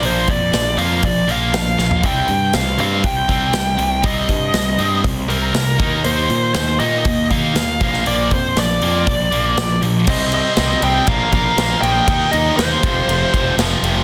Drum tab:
CC |----------------|----------------|----------------|----------------|
RD |----------------|----------------|----------------|----------------|
HH |o-o-o-o-o-o-o---|o-o-o-o-o-o-o-o-|o-o-o-o-o-o-o-o-|o-o-o-o-o-o-o-o-|
SD |----o-------o-o-|----o-------o---|----o-------o---|----o-------o--o|
FT |---------------o|----------------|----------------|----------------|
BD |--o-----o-------|o-------o-o-----|o-o-----o-----o-|--------o-o---o-|

CC |----------------|x---------------|----------------|
RD |----------------|--x-x-x-x-x-x-x-|x-x-x-x-x-x-x-x-|
HH |o-o-o-o-o-o-o-o-|----------------|----------------|
SD |----o-------o---|----o-------o---|----o-------o---|
FT |----------------|----------------|----------------|
BD |--o-----o-------|o-------o-o-----|o-----o---o-----|